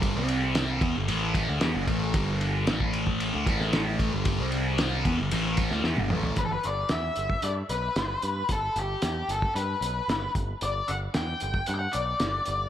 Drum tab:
RD |x-x-x-x-x-x-x-x-|x-x-x-x-x-x-x-x-|x-x-x-x-x-x-----|----------------|
HH |----------------|----------------|----------------|x-x-x-x-x-x-x-x-|
SD |----o-------o---|----o-----ooo---|----o------oo---|----o-------o---|
T1 |----------------|----------------|-------------o--|----------------|
T2 |----------------|----------------|--------------o-|----------------|
FT |----------------|----------------|---------------o|----------------|
BD |o-----o---o---o-|o----o-o--o---o-|o-----o---o-----|o------o--------|

RD |----------------|----------------|
HH |x-x-x-x-x-x-x-x-|x-x-x-x-x-x-x-x-|
SD |----o-------o---|----o-------o---|
T1 |----------------|----------------|
T2 |----------------|----------------|
FT |----------------|----------------|
BD |o------o------o-|-------o--------|